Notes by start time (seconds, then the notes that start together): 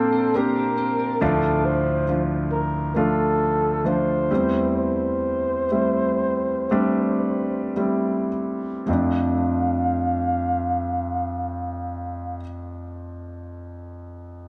Already playing: A#2 F3 A#3 C4 D4 F4 A4 C5
0.13 C4
0.34 A#3 C4 D4 G4 A#4
0.56 D4
0.78 C4
0.99 D4
1.21 D2 A2 F3 A3 D4 F4 A4
1.65 C5
2.08 F3 D4 F4
2.52 A#4
2.96 F3 A3 D4 F4 A4
3.84 F3 A3 D4 F4 C5
4.31 E2 E3 G3 A3 C4 E4
4.78 C5
5.71 G3 A3 C4 E4
6.71 G3 A3 C4 D4
7.76 G3 A3 C4 E4
8.86 F2 F3 A3 C4 F5
8.91 D4